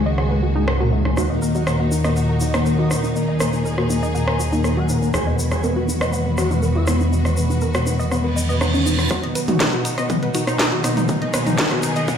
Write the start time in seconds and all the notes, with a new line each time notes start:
Already playing: C#2 C#3 D#3 G#3 A#3 F#4
0.06 D#5
0.18 G#3 G#4 F#5, cross-stick
0.31 G#3 G#4 B4
0.43 F#4
0.56 G#3 D#4 G#4
0.68 G#3 G#4 A#4, cross-stick
0.80 A#3 F#4 A#4
0.92 G#3 E4 G#4
1.05 G#3 D#4 G#4, cross-stick
1.17 D#2 A#2 D#3 F#3 D#4 F#4 F#5, cross-stick, shaker
1.30 A#3 A#4 D#5
1.42 A#3 A#4, shaker
1.55 D#4 F#4 F#5, shaker
1.67 A#3 A#4, cross-stick, shaker
1.80 A#3 F#4 A#4
1.92 D#4, shaker
2.04 A#3 A#4 D#5, cross-stick, shaker
2.16 A#3 A#4 F#5, shaker
2.29 A#3 A#4
2.40 D#4 F#4 D#5, shaker
2.54 A#3 D#4 A#4, cross-stick, shaker
2.66 A#3 A#4, shaker
2.79 D#4 F#4 D#5
2.91 A#3 D#4 A#4, cross-stick, shaker
3.04 A#3 D#4 A#4, shaker
3.15 A#3 D#4 G#4 A#4, shaker
3.28 D#5
3.40 A#3 A#4, cross-stick, shaker
3.53 A#3 D#4 A#4, shaker
3.65 A#4, shaker
3.78 A#3 F#4 A#4, cross-stick
3.90 A#3 D#4 A#4, shaker
4.03 D#5, shaker
4.15 A#3 A#4 F#5, shaker
4.28 A#3 A#4, cross-stick
4.40 F#4, shaker
4.52 A#3 D#4 A#4, shaker
4.64 A#3 A#4, cross-stick, shaker
4.77 F#4 F#5
4.89 A#3 D#4 A#4, shaker
5.02 A#3 D#4 A#4, shaker
5.14 E2 G#3 D#4 F#4 G#4 G#5, cross-stick, shaker
5.27 B3 B4 D#5
5.39 B3 B4, shaker
5.51 D#4 G#4 G#5, cross-stick, shaker
5.63 B3 A#4 B4, shaker
5.76 B3 F#4 B4
5.88 D#4, shaker
6.01 B3 B4 D#5, cross-stick, shaker
6.13 B3 B4 F#5, shaker
6.26 B3 B4
6.38 F#4 F#5, cross-stick, shaker
6.51 B3 D#4 B4, shaker
6.63 B3 A#4 B4, shaker
6.75 E4 F#4 E5
6.87 B3 E4 B4, cross-stick, shaker
7.00 B3 D#4 B4, shaker
7.12 B3 D#4 B4, shaker
7.25 D#5, cross-stick, shaker
7.37 B3 B4, shaker
7.50 B3 D#4 B4, shaker
7.61 A#4, shaker
7.74 B3 F#4 B4, cross-stick, shaker
7.86 B3 D#4 B4, shaker
7.99 D#5, shaker
8.11 B3 B4 F#5, cross-stick, reverse cymbal, shaker
8.24 B3 B4
8.36 D#5, shaker
8.49 B3 B4 D#5, shaker
8.61 B3 D#4 B4, cross-stick, shaker
8.74 C#4 D#4 C#5, shaker
8.86 B3 D#4 B4, shaker
8.99 B3 B4 F#5, cross-stick, shaker
9.11 B2 D#3 F#3 A#3 D#4 F#4, kick, cross-stick, closed hi-hat, riser, shaker
9.23 B3 D#5, closed hi-hat
9.35 B3 B4, closed hi-hat, shaker
9.48 D#4 F#4, closed hi-hat, mid tom, shaker
9.60 B3 A#4, kick, cross-stick, snare, closed hi-hat, shaker
9.73 B3 F#4, closed hi-hat
9.85 D#4, closed hi-hat, shaker
9.98 B3 D#5, cross-stick, closed hi-hat, shaker
10.10 B3 F#5, kick, closed hi-hat, mid tom, shaker
10.23 B3 B4, closed hi-hat
10.34 D#4 F#4, closed hi-hat, shaker
10.47 B3 D#4, cross-stick, closed hi-hat, shaker
10.59 B3 A#4, kick, snare, closed hi-hat, shaker
10.72 D#4 F#4, closed hi-hat
10.84 B3 D#4, cross-stick, closed hi-hat, shaker
10.97 B3 D#4, closed hi-hat, mid tom, shaker
11.08 B3 D#4 G#4, kick, closed hi-hat, shaker
11.22 D#5, closed hi-hat
11.34 B3 B4, cross-stick, closed hi-hat, shaker
11.47 B3 D#4, closed hi-hat, mid tom, shaker
11.58 A#4, kick, snare, closed hi-hat, shaker
11.71 B3 F#4, cross-stick, closed hi-hat
11.83 B3 D#4, closed hi-hat, shaker
11.96 D#5, closed hi-hat, shaker
12.08 B3 F#5, kick, closed hi-hat, shaker